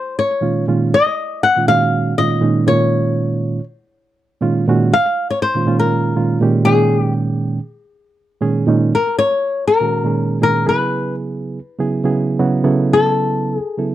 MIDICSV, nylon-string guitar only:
0, 0, Header, 1, 2, 480
1, 0, Start_track
1, 0, Tempo, 499584
1, 887, Time_signature, 4, 2, 24, 8
1, 13402, End_track
2, 0, Start_track
2, 0, Title_t, "Nylon-string guitar"
2, 0, Program_c, 0, 24
2, 0, Note_on_c, 0, 72, 89
2, 175, Note_off_c, 0, 72, 0
2, 179, Note_on_c, 0, 73, 72
2, 620, Note_off_c, 0, 73, 0
2, 905, Note_on_c, 0, 75, 89
2, 1373, Note_off_c, 0, 75, 0
2, 1376, Note_on_c, 0, 78, 95
2, 1595, Note_off_c, 0, 78, 0
2, 1615, Note_on_c, 0, 77, 95
2, 2091, Note_off_c, 0, 77, 0
2, 2094, Note_on_c, 0, 75, 83
2, 2568, Note_off_c, 0, 75, 0
2, 2572, Note_on_c, 0, 73, 76
2, 3492, Note_off_c, 0, 73, 0
2, 4742, Note_on_c, 0, 77, 109
2, 5093, Note_off_c, 0, 77, 0
2, 5097, Note_on_c, 0, 73, 87
2, 5205, Note_off_c, 0, 73, 0
2, 5209, Note_on_c, 0, 72, 89
2, 5564, Note_off_c, 0, 72, 0
2, 5568, Note_on_c, 0, 70, 74
2, 6127, Note_off_c, 0, 70, 0
2, 6389, Note_on_c, 0, 68, 107
2, 6725, Note_off_c, 0, 68, 0
2, 6725, Note_on_c, 0, 67, 107
2, 6845, Note_off_c, 0, 67, 0
2, 8597, Note_on_c, 0, 70, 78
2, 8821, Note_off_c, 0, 70, 0
2, 8825, Note_on_c, 0, 73, 88
2, 9291, Note_off_c, 0, 73, 0
2, 9295, Note_on_c, 0, 70, 78
2, 9975, Note_off_c, 0, 70, 0
2, 10023, Note_on_c, 0, 70, 83
2, 10264, Note_off_c, 0, 70, 0
2, 10268, Note_on_c, 0, 71, 69
2, 10707, Note_off_c, 0, 71, 0
2, 12427, Note_on_c, 0, 69, 82
2, 13042, Note_off_c, 0, 69, 0
2, 13042, Note_on_c, 0, 68, 82
2, 13339, Note_off_c, 0, 68, 0
2, 13402, End_track
0, 0, End_of_file